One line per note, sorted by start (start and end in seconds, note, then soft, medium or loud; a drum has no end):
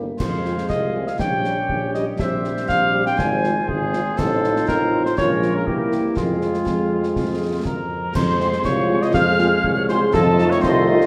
0.00 0.12 G1 soft
0.00 0.17 A#3 medium
0.19 0.61 F2 medium
0.19 1.15 F3 medium
0.19 1.15 G#3 medium
0.19 1.16 G#4 medium
0.19 0.66 C5 medium
0.19 1.16 F5 medium
0.19 concert bass drum medium
0.19 snare medium
0.19 crash soft
0.45 0.54 G#3 soft
0.45 0.54 C4 soft
0.45 0.55 F4 soft
0.45 snare soft
0.58 snare soft
0.69 1.11 C2 medium
0.69 1.09 D#5 medium
0.69 concert bass drum medium
0.69 snare medium
0.95 1.04 G#3 medium
0.95 1.04 C4 soft
0.95 1.04 F4 medium
1.07 1.19 F5 medium
1.07 snare soft
1.19 1.61 A#1 medium
1.19 3.19 G3 medium
1.19 2.19 C#4 medium
1.19 3.19 G4 medium
1.19 2.20 C#5 medium
1.19 1.90 G5 medium
1.19 concert bass drum medium
1.19 snare medium
1.44 1.54 G3 medium
1.44 1.54 C#4 soft
1.44 1.54 G4 medium
1.44 snare soft
1.69 2.06 A#1 medium
1.69 concert bass drum medium
1.94 2.04 G3 medium
1.94 2.04 C#4 medium
1.94 2.04 G4 medium
1.94 2.05 D#5 medium
1.94 snare soft
2.18 2.60 A#1 medium
2.18 4.14 C4 medium
2.18 4.14 C5 medium
2.18 2.65 E5 medium
2.18 concert bass drum medium
2.18 snare medium
2.44 2.54 G3 medium
2.44 2.53 C4 medium
2.44 2.54 G4 medium
2.44 snare soft
2.57 snare soft
2.68 3.10 A#1 medium
2.68 3.03 F5 loud
2.68 concert bass drum medium
2.68 snare medium
2.94 3.03 G3 medium
2.94 3.03 C4 medium
2.94 3.03 G4 medium
3.06 3.20 G5 medium
3.06 snare soft
3.18 3.60 G#1 medium
3.18 5.13 F3 medium
3.18 5.14 F4 medium
3.18 3.70 G#5 medium
3.18 concert bass drum medium
3.18 snare medium
3.44 3.53 G#3 medium
3.44 3.53 C4 medium
3.44 3.53 F4 medium
3.44 snare soft
3.69 4.10 G#1 medium
3.69 4.19 G#4 medium
3.69 concert bass drum medium
3.93 4.02 G#3 medium
3.93 4.02 C4 medium
3.93 4.02 F4 medium
3.93 snare medium
4.18 4.62 A1 medium
4.18 5.14 C4 medium
4.18 5.14 D#4 medium
4.18 5.14 F4 medium
4.18 4.67 A4 medium
4.18 5.14 C5 medium
4.18 concert bass drum medium
4.18 snare medium
4.18 crash soft
4.44 snare soft
4.56 snare medium
4.68 5.12 A1 medium
4.68 5.03 A#4 loud
4.68 concert bass drum medium
4.68 snare medium
5.05 5.17 C5 medium
5.05 snare soft
5.18 5.62 A#1 medium
5.18 5.65 F3 medium
5.18 5.68 G#3 medium
5.18 6.17 A#3 medium
5.18 5.68 C#4 medium
5.18 5.64 F4 medium
5.18 6.17 A#4 medium
5.18 5.52 C#5 medium
5.18 concert bass drum medium
5.18 snare medium
5.42 snare soft
5.56 5.68 A#4 medium
5.67 6.11 C2 medium
5.67 6.17 E3 medium
5.67 6.17 A#3 medium
5.67 6.16 C4 medium
5.67 6.17 E4 medium
5.67 6.16 G4 medium
5.67 concert bass drum medium
5.92 snare soft
6.16 6.61 F2 medium
6.16 7.90 F3 medium
6.16 7.90 G#3 medium
6.16 7.91 G#3 medium
6.16 7.87 C4 medium
6.16 7.91 F4 medium
6.16 7.62 F4 medium
6.16 7.91 F4 medium
6.16 7.87 G#4 medium
6.16 concert bass drum medium
6.16 snare medium
6.42 snare soft
6.54 snare soft
6.66 7.10 F2 medium
6.66 concert bass drum medium
6.66 snare medium
7.03 snare soft
7.16 7.60 F2 medium
7.16 concert bass drum medium
7.16 snare medium
7.65 8.10 F2 medium
7.65 8.12 A#4 medium
7.65 8.17 A#5 medium
7.65 concert bass drum medium
7.65 snare medium
8.14 8.57 F2 medium
8.14 10.10 F3 medium
8.14 10.10 G#3 medium
8.14 9.11 G#4 medium
8.14 9.10 C5 medium
8.14 8.66 C5 loud
8.14 8.64 C6 medium
8.14 concert bass drum medium
8.14 snare medium
8.14 crash medium
8.40 8.49 G#3 medium
8.40 8.49 C4 medium
8.40 8.49 F4 medium
8.40 snare medium
8.53 snare medium
8.64 9.01 C2 medium
8.64 9.11 F4 medium
8.64 9.04 C#5 loud
8.64 9.00 C#6 medium
8.64 concert bass drum medium
8.64 snare medium
8.89 8.98 G#3 medium
8.89 8.98 C4 medium
8.89 8.98 F4 medium
9.02 9.14 D#5 medium
9.02 9.08 D#6 medium
9.02 snare soft
9.13 9.55 F2 medium
9.13 10.16 G#4 medium
9.13 10.10 G#4 medium
9.13 9.61 C5 medium
9.13 9.72 F5 loud
9.13 9.86 F6 loud
9.13 concert bass drum medium
9.13 snare medium
9.39 9.48 G#3 medium
9.39 9.48 C4 medium
9.39 9.48 F4 medium
9.39 snare medium
9.63 10.05 C2 medium
9.63 10.14 C#5 medium
9.63 concert bass drum medium
9.89 9.99 G#3 medium
9.89 9.99 C4 medium
9.89 9.98 F4 medium
9.89 10.00 C5 loud
9.89 10.16 C6 medium
9.89 snare medium
10.13 10.55 F2 medium
10.13 11.06 D#3 medium
10.13 11.06 A3 medium
10.13 11.06 F4 medium
10.13 10.52 A4 loud
10.13 10.63 A4 medium
10.13 10.63 D#5 medium
10.13 10.51 A5 loud
10.13 concert bass drum loud
10.13 snare medium
10.39 10.48 A3 medium
10.39 10.49 D#4 medium
10.39 10.48 F4 medium
10.39 snare medium
10.50 10.63 C#5 loud
10.50 10.63 C#6 medium
10.50 snare medium
10.62 11.05 C2 loud
10.62 11.06 A4 medium
10.62 11.06 C5 loud
10.62 11.06 D#5 medium
10.62 11.06 C6 medium
10.62 concert bass drum medium
10.62 snare medium
10.88 10.98 A3 medium
10.88 10.97 D#4 medium
10.88 10.98 F4 medium
11.01 snare medium